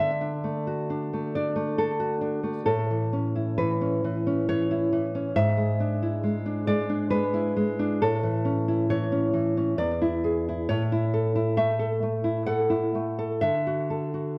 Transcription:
Already playing: E5
0.00 D3
0.21 D4
0.44 A3
0.67 F#4
0.90 D4
1.13 A3
1.35 D4 D5
1.56 A3
1.78 D4 A4
2.00 F#4
2.21 D4
2.43 A3
2.66 A2 A4
2.91 E3
3.13 C#4
3.36 E4
3.58 E3 B4
3.81 C#4
4.04 E3
4.27 C#4
4.49 E3 C#5
4.71 E4
4.93 E3
5.15 C#4
5.36 G#2 E5
5.57 G#3
5.80 D4
6.02 E4
6.24 G#3
6.46 D4
6.67 G#3 D5
6.89 D4
7.10 G#3 B4
7.34 E4
7.57 G#3
7.79 D4
8.02 A2 A4
8.23 E3
8.45 C#4
8.68 E4
8.90 E3 C#5
9.12 C#4
9.33 E3
9.57 C#4
9.78 E2 D5
10.02 E4
10.24 G#4
10.49 E4
10.69 A2 C#5
10.92 E4
11.14 A4
11.36 E4
11.57 A3 E5
11.79 A4
12.03 A3
12.24 E4
12.46 A4 F#5
12.70 E4
12.95 A3
13.19 A4
13.41 D3 E5
13.67 F#4
13.90 A4
14.14 F#4

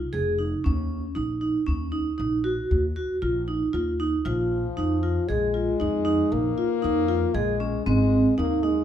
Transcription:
0.13 F1 G#4
0.38 D#4
0.64 D#2 C#4
1.15 A#1 D#4
1.41 D#4
1.66 D#2 C#4
1.92 D#4
2.18 A#1 D#4
2.44 F#4
2.71 D#2
2.96 F#4
3.22 A#1 F4
3.48 D#4
3.73 D#2 F4
4.00 D#4
4.24 A#1 F3 F4
4.77 F2 D#4
5.03 F4
5.29 A#1 G#3 G#4
5.54 F4
5.80 F2 D#4
6.05 D#4
6.32 A#1 A#3
6.58 F4
6.82 F2 D#4
7.08 F4
7.34 A#1 G#3 G#4
7.60 C#4
7.86 G#1 G#3 C4
8.38 D#2 A#3 D#4
8.63 G#3 D#4

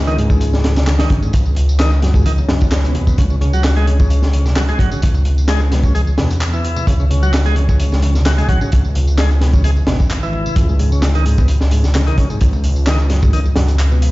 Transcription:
Already playing: C#2
0.07 D#3, closed hi-hat, tambourine, muted conga
0.18 G#2, closed hi-hat, high conga
0.30 G#2, kick, tambourine
0.40 closed hi-hat, tambourine, muted conga
0.53 snare, tambourine
0.64 G#2, snare, closed hi-hat, muted conga
0.76 snare, closed hi-hat, tambourine, low conga
0.87 C#3, snare, clap, closed hi-hat, tambourine
0.98 D#3, snare, closed hi-hat, tambourine, muted conga, low conga
1.10 G#1 C#3, kick, closed hi-hat, high conga
1.22 G#2, tambourine, muted conga
1.33 C#2, kick, closed hi-hat, tambourine
1.46 tambourine
1.55 closed hi-hat, muted conga, low conga
1.69 tambourine
1.79 D#3, snare, clap, closed hi-hat, tambourine, muted conga
1.92 tambourine
2.02 F#2, snare, closed hi-hat, high conga
2.14 G#2, kick, tambourine, muted conga
2.26 D#3, closed hi-hat, tambourine, swell, high conga
2.38 tambourine, muted conga
2.49 C#2 F#2, snare, closed hi-hat, low conga
2.61 kick, tambourine, high conga
2.72 snare, clap, closed hi-hat, tambourine, muted conga
2.84 B2, closed hi-hat, tambourine
2.95 D#2, closed hi-hat, muted conga
3.07 kick, tambourine, high conga, low conga
3.18 C#2 C#3, kick, closed hi-hat, tambourine, muted conga
3.30 C#3, tambourine
3.41 C#3, closed hi-hat, muted conga, low conga
3.53 F#3, tambourine
3.64 snare, clap, closed hi-hat, tambourine
3.76 G#3, closed hi-hat, tambourine, muted conga
3.87 C#3, closed hi-hat, high conga
4.00 C#3, kick, tambourine, muted conga
4.10 closed hi-hat, tambourine
4.23 snare, tambourine
4.33 C#3, closed hi-hat, muted conga
4.45 snare, tambourine, low conga
4.56 F#3, snare, clap, closed hi-hat, tambourine, muted conga
4.68 G#3, closed hi-hat, tambourine, low conga
4.79 G#1 F#3, kick, closed hi-hat, high conga
4.91 C#3, tambourine, muted conga
5.02 C#2, kick, closed hi-hat, tambourine
5.14 tambourine, muted conga
5.25 closed hi-hat, low conga
5.38 tambourine
5.48 G#3, snare, clap, closed hi-hat, tambourine, muted conga
5.61 tambourine
5.72 B2, snare, closed hi-hat, muted conga, high conga
5.83 C#3, kick, tambourine
5.95 G#3, closed hi-hat, tambourine, high conga
6.07 tambourine, muted conga
6.18 E2 B2, snare, closed hi-hat, low conga
6.30 closed hi-hat, tambourine, muted conga, high conga
6.40 clap, closed hi-hat, tambourine
6.53 E3, tambourine
6.64 closed hi-hat, muted conga
6.76 tambourine, low conga
6.87 C#2 C#3, kick, closed hi-hat, tambourine, muted conga
7.00 C#3, tambourine
7.10 C#3, closed hi-hat, low conga
7.23 F#3, tambourine, muted conga
7.34 snare, clap, closed hi-hat, tambourine
7.45 G#3, closed hi-hat, tambourine, muted conga
7.56 C#3, closed hi-hat, high conga
7.69 C#3, kick, tambourine
7.80 closed hi-hat, tambourine, muted conga
7.92 snare, tambourine
8.02 C#3, closed hi-hat, muted conga
8.15 snare, tambourine, low conga
8.26 F#3, snare, clap, closed hi-hat, tambourine
8.38 G#3, closed hi-hat, tambourine, muted conga, low conga
8.49 G#1 F#3, kick, closed hi-hat, high conga
8.61 C#3, tambourine, muted conga
8.72 C#2, kick, closed hi-hat, tambourine
8.84 tambourine
8.95 closed hi-hat, muted conga, low conga
9.07 tambourine
9.18 G#3, snare, clap, closed hi-hat, tambourine, muted conga
9.31 tambourine
9.41 B2, snare, closed hi-hat, high conga
9.53 C#3, kick, tambourine, muted conga
9.64 G#3, closed hi-hat, tambourine, high conga
9.76 tambourine, muted conga
9.87 G#1 B2, snare, closed hi-hat, low conga
9.99 G#1, kick, tambourine, high conga
10.10 G#1, clap, closed hi-hat, tambourine, muted conga
10.23 E3, tambourine
10.33 muted conga
10.46 tambourine, low conga
10.56 C#2 G#2, kick, closed hi-hat, tambourine, muted conga
10.69 G#2, tambourine
10.79 G#2, closed hi-hat, open hi-hat, muted conga, low conga
10.92 C#3, tambourine
11.02 snare, clap, closed hi-hat, tambourine
11.15 D#3, closed hi-hat, tambourine, muted conga
11.26 G#2, closed hi-hat, open hi-hat, high conga
11.38 B2, kick, tambourine, muted conga
11.48 closed hi-hat, tambourine
11.61 snare, tambourine
11.71 G#2, closed hi-hat, open hi-hat, muted conga
11.84 snare, tambourine, low conga
11.95 C#3, snare, clap, closed hi-hat, tambourine, muted conga
12.07 D#3, closed hi-hat, tambourine, low conga
12.18 G#1 C#3, kick, closed hi-hat, open hi-hat, high conga
12.30 G#2, tambourine, muted conga
12.41 C#2, kick, closed hi-hat, tambourine
12.53 tambourine, muted conga
12.64 closed hi-hat, open hi-hat, low conga
12.76 tambourine
12.87 D#3, snare, clap, closed hi-hat, tambourine, muted conga
12.99 tambourine
13.10 F#2, snare, closed hi-hat, open hi-hat, muted conga, high conga
13.22 G#2, kick, tambourine
13.33 D#3, closed hi-hat, tambourine, high conga
13.45 tambourine, muted conga
13.56 C#2 F#2, snare, closed hi-hat, open hi-hat, low conga
13.68 closed hi-hat, tambourine, muted conga, high conga
13.79 clap, closed hi-hat, tambourine
13.92 B2, tambourine
14.02 closed hi-hat, open hi-hat, muted conga

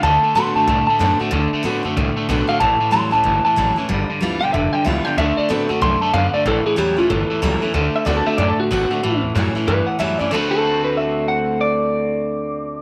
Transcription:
0.03 D2 D3 A3 A5
0.23 D3 A3
0.35 A2 D3 A3 B3 C4 F#4 C6
0.55 F#2 D3 A3 A5
0.67 C2 A2 D3 A3
0.87 D3 A3 A5, muted upright bass stroke
0.99 F#2 D3 A3 B3 C4 F#4
1.19 D3 A3 C4 F#4, muted upright bass stroke
1.31 D2 D3 A3
1.52 D3 A3, muted upright bass stroke
1.63 A2 D3 A3 B3 C4 F#4
1.83 F#2 D3 A3 C4 F#4
1.96 C2 A2 D3 A3
2.16 D3 A3, muted upright bass stroke
2.29 B1 D3 A3 B3 C4 F#4
2.48 D3 A3 C4 F#4 F5
2.60 A1 A2 E3 A5
2.80 A2 E3, muted upright bass stroke
2.91 E2 A2 E3 F#3 G3 C#4 E4 C6
3.11 C#2 A2 E3 C#4 E4 A5
3.24 G1 E2 A2 E3
3.44 A2 E3 A5, muted upright bass stroke
3.56 A1 A2 E3 F#3 G3 C#4 E4
3.76 A2 E3 C#4 E4
3.89 G1 G2 D3 G3
4.09 G2 D3, muted upright bass stroke
4.21 D2 G2 E3 G3 B3 F4
4.41 B1 G2 D3 B3 F4 G5
4.53 F1 G2 D3 E5
4.73 G2 D3 G5, muted upright bass stroke
4.85 C#2 G2 E3 G3 B3 F4 E5
5.05 G2 D3 B3 F4 G5
5.17 D2 D3 A3 E5
5.37 D3 A3 D5, muted upright bass stroke
5.49 A2 D3 A3 B3 C4 F#4
5.69 F#2 D3 A3 C4 F#4
5.81 C2 F#2 D3 A3 C6
6.01 D3 A3 A5, muted upright bass stroke
6.13 F#2 G2 D3 B3 F5
6.34 D3 A3 D5, muted upright bass stroke
6.45 A1 A2 E3 A4
6.65 A2 E3 G#4, muted upright bass stroke
6.76 E2 A2 E3 F#3 G3 C#4 E4 G4
6.97 C#2 A2 E3 C#4 E4 F4
7.10 G1 E2 A2 E3 A4
7.29 A2 E3, muted upright bass stroke
7.42 C#2 A2 E3 F#3 G3 C#4 E4
7.61 A2 E3 C#4 E4, muted upright bass stroke
7.74 D2 D3 A3
7.94 E5, muted upright bass stroke
8.05 D2 D3 A3 B3 C4 F#4 D5
8.17 A4
8.26 D3 A3 E5, muted upright bass stroke
8.38 F#2 A2 D3 A3 D5
8.48 A4
8.59 F#4, muted upright bass stroke
8.71 G#1 D3 A3 B3 C4 F#4
8.91 D3 A3 C4 F#4, muted upright bass stroke
9.03 A1 A2 E3
9.23 E2
9.35 F#2 A2 E3 F#3 G3 C#4 E4
9.55 A2 E3 C#4 E4, muted upright bass stroke
9.67 E2 G2 A2 E3 B4
9.87 F#5, muted upright bass stroke
9.99 F#2 A2 E3 F#3 G3 C#4 E4 E5
10.19 G2 A2 E3 C#4 E4 D5
10.31 D2 D3 A3 C4 F#4 B4
10.51 A4
10.85 B4
10.97 E5
11.28 F#5
11.61 D5

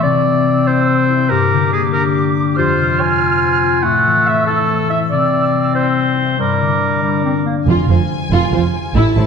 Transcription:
Already playing: C4 E4 C5
0.03 C3 C4 D5 E6
0.25 G3
0.46 C4
0.67 E4 C5
0.88 G4
1.09 E4
1.29 G2 G4 A#4 D6
1.52 D3
1.72 A#3 G#4
1.93 D4 A#4
2.16 G4
2.37 D4
2.56 F2 F4 C5 F6
2.80 C3
3.01 C4 G#5
3.44 C5
3.64 F4
3.83 A2 A3 F#5 E6
4.06 E3
4.27 A3 E5
4.47 E4 A4
4.70 C5
4.90 E4 E5
5.09 C3 C4 D5
5.32 C4
5.53 G3
5.74 E4 C5
5.96 C5
6.18 E4
6.38 G2 G3 A#4 D6
6.61 D3
6.82 G3
7.03 G3 D4
7.24 C4 D5
7.45 A#3 D4
7.67 F1 F2 F4 G#5
7.88 F1 F2 G#3 F4 C5
8.11 C5
8.31 F1 F2 F4 F5
8.53 F1 F2 F4 G#4 C5
8.74 C5
8.94 A1 A2 E4 A5
9.15 A1 A2 A3 E4 C5

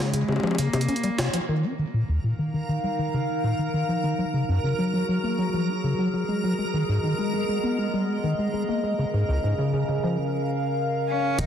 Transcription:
0.00 C#3 G#3
0.13 C#3, closed hi-hat
0.28 C#3, high bongo
0.32 high bongo
0.36 high bongo
0.40 F3, high bongo
0.43 high bongo
0.47 high bongo
0.51 high bongo
0.55 C#3 A#3, closed hi-hat, high bongo
0.73 C3, closed hi-hat, high bongo
0.81 closed hi-hat
0.88 C#4, closed hi-hat
0.96 closed hi-hat
1.04 G3, closed hi-hat
1.18 C3, snare, closed hi-hat
1.33 F3, closed hi-hat
1.49 D#3
1.63 C#4
1.78 D#3 A#4 A#5
1.93 A#2
2.08 D#2 A#4
2.15 D#4
2.19 F5
2.24 A#2
2.38 D#3
2.54 D#3
2.68 D#3
2.83 G3
2.98 D#3
3.13 C#3
3.28 D#4
3.43 A#2
3.59 D#3
3.73 D#3
3.88 F3
4.04 D#3
4.18 F#3
4.33 C#3
4.38 F#4
4.48 F#2
4.63 C#3
4.74 G#4
4.78 F#3
4.93 F#3
5.08 F#3
5.24 A#3
5.38 F#3
5.54 F3
5.69 F#4
5.84 C#3
5.99 F#3
6.14 F#3
6.29 G#3
6.44 F#3
6.58 G#3
6.74 D#3
6.89 G#2
6.94 B3
7.04 D#3
7.19 G#3
7.32 G#3 D#5
7.49 G#3
7.63 B3
7.78 G#3
7.93 G3
8.08 G#3
8.23 D#3
8.38 G#3
8.54 G#3
8.69 A#3
8.84 G#3
8.99 C#3
9.07 C#4
9.13 G#2
9.21 A#4
9.29 C#2
9.44 G#2
9.59 C#3
9.74 C#3
9.89 C#3
9.93 F5
10.04 F3
11.09 C#4
11.39 D#1 D#3 D#4, closed hi-hat

